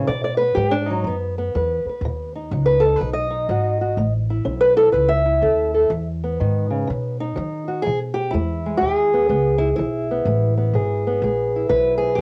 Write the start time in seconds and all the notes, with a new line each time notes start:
Already playing: B3
0.08 B2 D5
0.24 D5
0.37 B3 B4
0.55 G#2 F#3 G4
0.71 D4
0.86 D#4
0.91 F#3
1.04 F#2 F#3 B3
1.38 B3
1.55 E2 F#3 B4
1.85 B4, muted upright bass stroke
2.01 D#2 B2
2.35 D#4
2.51 C#2 F#3
2.65 B4
2.80 A4
2.85 D#4
2.96 B4
3.01 B1 F#3
3.13 D#5
3.30 D#4
3.49 G#1 F#3 F#4
3.81 F#4
3.97 A1 A3
4.30 E4
4.45 B1 C#4
4.61 B4
4.76 E4 A4
4.92 C#2 E3 B4
5.09 E5
5.26 E4
5.42 D#2 C#4 A4
5.74 A4
5.90 E2 E3
6.24 B3
6.40 G#2 D#3
6.70 C#3
6.87 B2
7.20 D#4
7.36 D#3 F#3
7.68 F#4
7.82 G#4
7.86 B2 E3
8.14 G4
8.31 E2 G#3 E4
8.66 G#3
8.78 D#2 G4
8.83 B2
8.96 G#4
9.14 B3
9.29 C#2 G#3 B3
9.58 E4
9.76 B1 E3 E4
10.11 B3
10.25 A1 G#3
10.57 B3
10.73 G#1 B2 G#4
11.07 B3
11.22 A#1 G#3 G#4
11.56 E4
11.69 B1 E3 B4
11.98 G#4
12.15 G4